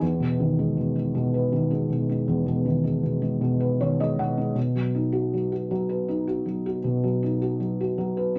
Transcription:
felt piano
0.01 E2
0.20 B2
0.40 D#3
0.59 G#3
0.77 B2
0.96 G#3
1.15 B2
1.34 B4
1.52 D#3
1.71 G#3
1.90 B2
2.09 G#3
2.28 E2
2.46 B2
2.66 D#3
2.84 G#3
3.03 B2
3.22 G#3
3.41 B2
3.60 B4
3.81 D#3 C#5
4.00 G#3 D#5
4.19 B2 F#5
4.38 G#3
4.55 B2
4.75 F#3
4.95 D#4
5.12 F#4
5.34 F#3
5.52 F#4
5.71 F#3
5.89 B4
6.08 D#4
6.27 F#4
6.46 F#3
6.66 F#4
6.84 B2
7.04 F#3
7.23 D#4
7.42 F#4
7.60 F#3
7.80 F#4
7.98 F#3
8.17 B4
8.35 D#4

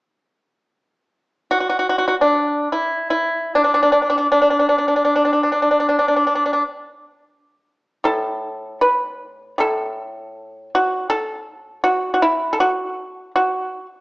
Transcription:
pipa
1.51 F#4
1.60 F#4
1.69 F#4
1.79 F#4
1.89 F#4
1.98 F#4
2.08 F#4
2.21 D4
2.72 E4
3.10 E4
3.55 D4
3.64 D4
3.74 D4
3.83 D4
3.92 D4
4.02 D4
4.10 D4
4.18 D4
4.32 D4
4.42 D4
4.50 D4
4.59 D4
4.69 D4
4.78 D4
4.88 D4
4.96 D4
5.04 D4
5.15 D4
5.24 D4
5.32 D4
5.43 D4
5.52 D4
5.62 D4
5.71 D4
5.80 D4
5.89 D4
5.99 D4
6.08 D4
6.16 D4
6.27 D4
6.35 D4
6.46 D4
6.53 D4
8.04 A2 A4
8.81 B4
9.58 A2 A4
10.75 F#4
11.10 A4
11.84 F#4
12.14 F#4
12.22 E4
12.53 A4
12.60 F#4
13.35 F#4

